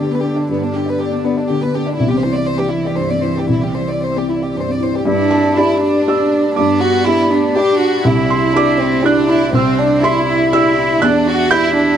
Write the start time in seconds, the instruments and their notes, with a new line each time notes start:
Already playing: felt piano G2 B3 D4 D5, cello D3, ambient pad B3 D4 D5
0.00 felt piano D3, violin section G4
0.12 felt piano B3, violin section B4
0.23 felt piano D4, violin section G4
0.36 violin section D4, felt piano D5
0.49 felt piano G2, violin section B3
0.60 felt piano B3, violin section D4
0.73 felt piano D4, violin section G4
0.86 violin section B4, felt piano D5
0.99 violin section G4
1.10 felt piano B3, violin section D4
1.24 violin section B3, felt piano D4
1.37 violin section D4, felt piano D5
1.49 felt piano D3, violin section G4
1.61 felt piano B3, violin section B4
1.74 felt piano D4, violin section G4
1.85 violin section D4, felt piano D5
1.95 cello E3, ambient pad C4 E4, violin section E4
2.00 felt piano C2
2.09 felt piano C4, violin section G4
2.21 felt piano E4, violin section C5
2.33 violin section D5, felt piano D5
2.45 violin section C5
2.57 violin section G4
2.71 violin section E4, felt piano E4
2.84 violin section G4, felt piano D5
2.96 felt piano G2, violin section C5
3.09 felt piano C4, violin section D5
3.22 felt piano E4, violin section C5
3.35 violin section G4, felt piano D5
3.49 felt piano C2, violin section E4
3.62 felt piano C4, violin section G4
3.76 felt piano E4, violin section C5
3.88 felt piano D5, violin section D5
4.02 violin section C5
4.15 felt piano C4, violin section G4
4.29 felt piano E4, violin section E4
4.42 violin section G4, felt piano D5
4.55 felt piano G2, violin section C5
4.68 felt piano C4, violin section D5
4.80 felt piano E4, violin section C5
4.94 violin section G4, felt piano D5
5.05 felt piano G2, ambient pad D4 G4 D5, violin section D4, cello E4
5.31 felt piano A5
5.57 cello D4, felt piano D4 G4 D5 B5, violin section E4
5.83 violin section D4
6.08 felt piano D4 G4 D5 E6
6.56 felt piano G2 D6, cello B3, violin section D4
6.80 violin section F#4
7.04 felt piano D4 G4 D5 B5, violin section E4
7.30 violin section D4
7.55 cello D4, felt piano D4 G4 D5, violin section G4
7.79 violin section F#4
8.05 felt piano C2, cello E4, violin section E4, ambient pad E5
8.30 felt piano C6
8.55 violin section D4, felt piano E4 G4 D5 D6
8.80 violin section C4
9.03 violin section D4, cello D4, felt piano E4 G4 D5 F#6
9.28 violin section E4
9.53 felt piano C2 E6, violin section C4, cello C4
9.79 violin section D4
10.02 felt piano E4 G4 D5 C6, violin section E4, cello E4
10.27 violin section E4
10.53 felt piano E4 G4 D5 E6, cello E4
11.02 felt piano E2 F#6, violin section D4, cello D4, ambient pad D4 G4
11.26 violin section F#4
11.51 violin section E4, felt piano E4 G4 D5 G6, cello E4
11.75 violin section D4